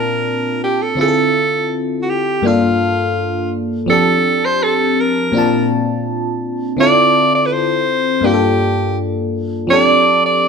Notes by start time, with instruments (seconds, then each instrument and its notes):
Already playing: fm electric piano A#2 C4 D4 F4 A5, alto saxophone A#4
0.64 alto saxophone G4
0.82 alto saxophone A4
0.95 fm electric piano D3 C4 E4
1.00 fm electric piano F4 G#4, alto saxophone A4
1.08 fm electric piano A4
2.02 alto saxophone F#4
2.10 alto saxophone G4
2.42 fm electric piano G2 A#3 D4
2.46 fm electric piano F4 A4, alto saxophone F4
3.86 fm electric piano F3 C4 D4, alto saxophone A4
3.91 fm electric piano G4 A5
4.45 alto saxophone C5
4.63 alto saxophone A4
5.00 alto saxophone A#4
5.32 fm electric piano A#2 C4 D4
5.37 fm electric piano F4 A5
6.77 fm electric piano D3 C4 E4, alto saxophone D5
6.81 fm electric piano F4 A4
7.35 alto saxophone D5
7.46 alto saxophone B4
7.53 alto saxophone C5
8.21 fm electric piano G2 A#3 D4
8.25 fm electric piano F4 G4, alto saxophone G4
8.34 fm electric piano A4
9.67 fm electric piano F3 C4 D4, alto saxophone D5
9.72 fm electric piano G4 A4
10.26 alto saxophone D5